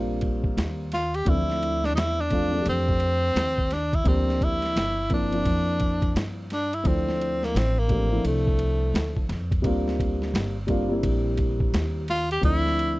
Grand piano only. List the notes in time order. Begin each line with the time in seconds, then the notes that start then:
Already playing: G3 A#3 C4 D4 F4
1.25 E3 A3 C4 D4 E4
1.32 F3
2.30 F3 A3 C4 D4 F4
2.52 F3 A3 C4 D4
2.61 G4
4.04 F3 A#3 C4 D4 G4
5.09 F3 A#3 C4 D4 E4
5.32 F3 A#3 C4 D4 E4
6.84 F3 A3 C4 D4 E4
7.88 F3 A3 C4 D4 G4
8.09 F3 A3 C4 D4 E4
9.62 G3 A#3 C4 D4 F4
10.67 G3 A#3 C4 D4 F4
10.89 G3 A#3 C4 D4 E4
12.41 F3 A3 C4 D4 E4